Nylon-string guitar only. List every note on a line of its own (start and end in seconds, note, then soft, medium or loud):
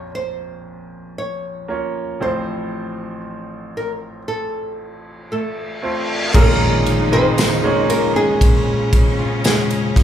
0.00 0.11 C#5 medium
0.15 1.18 C5 medium
1.18 2.22 C#5 medium
2.22 3.21 C5 medium
3.77 3.91 A#4 medium
4.28 5.27 A4 medium
5.32 6.31 A3 medium
5.32 6.05 A4 medium
6.35 7.09 A#3 medium
6.35 7.08 A#4 loud
7.13 7.86 C4 medium
7.13 7.89 C5 loud
7.90 8.14 A#3 medium
7.90 8.16 A#4 medium
8.16 9.42 G#3 medium
8.16 9.41 G#4 loud
9.45 10.03 G#3 medium
9.45 10.03 G#4 medium